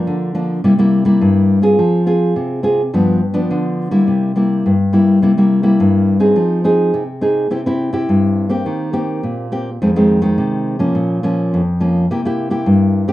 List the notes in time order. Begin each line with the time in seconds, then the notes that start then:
Already playing: F3 A#3 D4
0.07 D3
0.35 F3 A#3 D4
0.64 C3 G3 A#3 E4
0.79 G3 A#3 E4
1.05 G3 A#3 E4
1.21 G2
1.62 C4 F4 G#4
1.79 F3
2.06 C4 F4 G#4
2.36 C3
2.63 C4 F4 G#4
2.94 G2 F3 B3 D4
3.34 F3 B3 D4
3.51 D3
3.91 G3 A#3 E4
4.08 C3
4.36 G3 A#3 E4
4.66 G2
4.93 G3 A#3 E4
5.22 C3 G3 A#3 E4
5.38 G3 A#3 E4
5.63 G3 A#3 E4
5.80 G2
6.20 C4 D#4 G#4
6.36 F3
6.64 C4 D#4 G#4
6.94 C3
7.21 C4 D#4 G#4
7.51 C3 C4 E4 G4
7.66 C4 E4 G4
7.93 C4 E4 G4
8.09 G2
8.49 A#3 C4 G4
8.66 D#3
8.93 A#3 C4 G4
9.23 A#2
9.52 A#3 C4 G4
9.82 F2 D#3 G#3 C4
9.96 D#3 G#3 C4
10.22 D#3 G#3 C4
10.38 C3
10.79 F3 A#3 C#4
10.95 A#2
11.23 F3 A#3 C#4
11.54 F2
11.80 F3 A#3 C#4
12.11 C3 A#3 E4 G4
12.25 A#3 E4 G4
12.50 A#3 E4 G4
12.66 G2
13.08 G#3 C4 G4